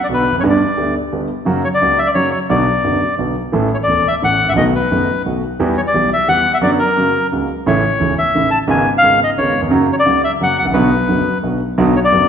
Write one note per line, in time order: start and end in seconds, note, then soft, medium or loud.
0.04 0.07 D5 medium
0.09 0.24 B1 soft
0.09 0.24 B2 medium
0.09 0.24 D3 soft
0.09 0.24 F#3 soft
0.09 0.24 B3 soft
0.09 0.24 F#4 medium
0.14 0.36 B4 medium
0.31 0.35 E2 soft
0.35 0.40 F2 medium
0.35 0.44 F#2 medium
0.40 0.58 G1 medium
0.40 0.58 G2 medium
0.40 0.58 D3 medium
0.40 0.58 G3 medium
0.40 0.58 B3 medium
0.40 0.58 G4 medium
0.40 0.43 C#5 medium
0.49 0.95 D5 medium
0.77 0.92 D2 medium
0.77 0.92 D3 soft
0.77 0.92 G3 soft
0.77 0.92 B3 soft
0.77 0.92 G4 soft
1.12 1.27 G1 soft
1.12 1.27 G2 medium
1.12 1.27 D3 soft
1.12 1.27 G3 soft
1.12 1.27 B3 soft
1.12 1.27 G4 soft
1.45 1.61 F#2 medium
1.45 1.61 C#3 medium
1.45 1.61 F#3 medium
1.45 1.61 A#3 medium
1.45 1.61 F#4 medium
1.65 1.68 C#5 medium
1.74 2.00 D5 medium
1.82 1.96 C#2 medium
1.82 1.96 C#3 medium
1.82 1.96 F#3 soft
1.82 1.96 A#3 soft
1.82 1.96 F#4 medium
1.99 2.07 E5 medium
2.07 2.11 D5 medium
2.15 2.30 F#2 medium
2.15 2.30 C#3 soft
2.15 2.30 F#3 medium
2.15 2.30 A#3 soft
2.15 2.30 F#4 soft
2.15 2.30 C#5 medium
2.31 2.39 C#5 medium
2.49 2.64 B1 medium
2.49 2.64 B2 medium
2.49 2.64 D3 medium
2.49 2.64 F#3 medium
2.49 2.64 B3 medium
2.49 2.64 F#4 medium
2.49 3.15 D5 medium
2.84 2.99 F#1 soft
2.84 2.99 F#2 soft
2.84 2.99 D3 soft
2.84 2.99 F#3 soft
2.84 2.99 B3 soft
2.84 2.99 F#4 soft
3.18 3.33 B1 medium
3.18 3.33 B2 soft
3.18 3.33 D3 soft
3.18 3.33 F#3 soft
3.18 3.33 B3 soft
3.18 3.33 F#4 soft
3.52 3.68 A1 medium
3.52 3.68 A2 medium
3.52 3.67 E3 medium
3.52 3.68 A3 medium
3.52 3.68 C#4 medium
3.52 3.68 A4 medium
3.74 3.77 C#5 medium
3.83 4.08 D5 medium
3.88 4.02 E1 medium
3.88 4.02 E2 medium
3.88 4.02 E3 soft
3.88 4.02 A3 soft
3.88 4.03 C#4 soft
3.88 4.03 A4 soft
4.08 4.15 E5 medium
4.22 4.37 A1 medium
4.22 4.37 A2 medium
4.22 4.37 E3 soft
4.22 4.37 A3 soft
4.22 4.37 C#4 soft
4.22 4.37 A4 soft
4.22 4.50 F#5 medium
4.44 4.48 G#1 soft
4.49 4.53 A1 soft
4.49 4.53 E5 medium
4.53 4.57 A#1 medium
4.53 4.71 B1 medium
4.53 4.71 B2 medium
4.53 4.71 D#3 medium
4.53 4.71 A3 medium
4.53 4.71 B3 medium
4.53 4.71 F#4 medium
4.53 4.65 D#5 medium
4.75 5.22 B4 medium
4.91 5.05 F#1 medium
4.91 5.06 F#2 medium
4.91 5.05 D#3 soft
4.91 5.05 A3 soft
4.91 5.06 B3 soft
4.91 5.06 F#4 soft
5.26 5.40 B1 medium
5.26 5.40 B2 soft
5.26 5.40 D#3 soft
5.26 5.40 A3 soft
5.26 5.40 B3 soft
5.26 5.40 F#4 soft
5.60 5.74 E2 medium
5.60 5.74 E3 medium
5.60 5.74 G3 medium
5.60 5.74 B3 medium
5.60 5.74 G4 medium
5.78 5.81 C#5 medium
5.87 6.10 D5 medium
5.94 6.08 B1 medium
5.94 6.08 B2 soft
5.94 6.08 E3 soft
5.94 6.08 G3 soft
5.94 6.08 B3 soft
5.94 6.09 G4 medium
6.13 6.28 E5 medium
6.28 6.43 E2 soft
6.28 6.43 E3 medium
6.28 6.43 G3 soft
6.28 6.43 B3 soft
6.28 6.43 G4 medium
6.28 6.52 F#5 medium
6.54 6.58 E5 medium
6.62 6.77 F#2 medium
6.62 6.76 D3 medium
6.62 6.77 F#3 medium
6.62 6.76 B3 medium
6.62 6.77 F#4 medium
6.62 6.71 D5 medium
6.79 7.27 A#4 medium
6.97 7.11 F#2 medium
6.97 7.11 C#3 soft
6.97 7.12 F#3 soft
6.97 7.11 A#3 soft
6.97 7.12 F#4 soft
7.32 7.46 C#2 medium
7.32 7.46 C#3 soft
7.32 7.46 F#3 soft
7.32 7.47 A#3 soft
7.32 7.46 F#4 soft
7.66 7.80 A1 medium
7.66 7.81 A2 medium
7.66 7.80 C#3 medium
7.66 7.80 E3 medium
7.66 7.81 A3 medium
7.66 7.81 E4 medium
7.66 8.14 C#5 medium
8.00 8.15 E1 soft
8.00 8.14 E2 soft
8.00 8.14 C#3 soft
8.00 8.14 E3 soft
8.00 8.15 A3 soft
8.00 8.15 E4 soft
8.18 8.50 E5 medium
8.35 8.49 A1 medium
8.35 8.49 A2 soft
8.35 8.49 C#3 soft
8.35 8.49 E3 soft
8.35 8.49 A3 soft
8.35 8.50 E4 soft
8.51 8.59 A5 medium
8.68 8.83 G#1 medium
8.68 8.83 G#2 medium
8.68 8.83 C#3 medium
8.68 8.83 G#3 medium
8.68 8.83 B3 medium
8.68 8.83 F4 medium
8.68 8.93 G#5 medium
8.98 9.20 F5 medium
9.03 9.18 G#1 medium
9.03 9.17 G#2 medium
9.03 9.17 C#3 soft
9.03 9.17 G#3 soft
9.03 9.18 B3 soft
9.03 9.18 F4 medium
9.24 9.30 D#5 medium
9.38 9.52 G#1 medium
9.38 9.52 G#2 medium
9.38 9.52 C#3 soft
9.38 9.52 G#3 soft
9.38 9.52 B3 soft
9.38 9.52 F4 soft
9.38 9.61 C#5 medium
9.58 9.63 D#2 soft
9.58 9.67 E2 medium
9.67 9.71 F2 medium
9.67 9.85 C#3 medium
9.71 9.86 F#2 medium
9.71 9.86 F#3 medium
9.71 9.86 A#3 medium
9.71 9.86 F#4 medium
9.93 9.96 C#5 medium
9.99 10.22 D5 medium
10.06 10.20 C#2 soft
10.06 10.20 C#3 medium
10.06 10.20 F#3 soft
10.06 10.20 A#3 soft
10.06 10.20 F#4 medium
10.24 10.32 E5 medium
10.41 10.55 F#2 medium
10.41 10.55 C#3 soft
10.41 10.55 F#3 medium
10.41 10.55 A#3 soft
10.41 10.55 F#4 medium
10.41 10.57 F#5 medium
10.59 10.66 G#1 soft
10.59 10.66 F#5 medium
10.65 10.69 A1 medium
10.70 10.74 A#1 medium
10.70 10.88 D3 medium
10.70 10.88 F#3 medium
10.70 10.88 B3 medium
10.70 11.38 B4 medium
10.74 10.89 B1 medium
10.74 10.88 B2 medium
10.74 10.88 F#4 medium
11.08 11.23 F#1 soft
11.08 11.23 F#2 medium
11.08 11.23 D3 soft
11.08 11.23 F#3 soft
11.08 11.23 B3 soft
11.08 11.23 F#4 soft
11.43 11.57 B1 soft
11.43 11.57 B2 soft
11.43 11.57 D3 soft
11.43 11.57 F#3 soft
11.43 11.57 B3 soft
11.43 11.58 F#4 soft
11.78 11.92 B1 medium
11.78 11.92 B2 medium
11.78 11.92 D3 medium
11.78 11.92 F#3 medium
11.78 11.92 B3 medium
11.78 11.92 F#4 medium
11.96 12.00 C#5 medium
12.05 12.29 D5 loud
12.12 12.26 F#1 medium
12.12 12.26 F#2 medium
12.12 12.26 D3 medium
12.12 12.26 F#3 soft
12.12 12.26 B3 soft
12.12 12.26 F#4 medium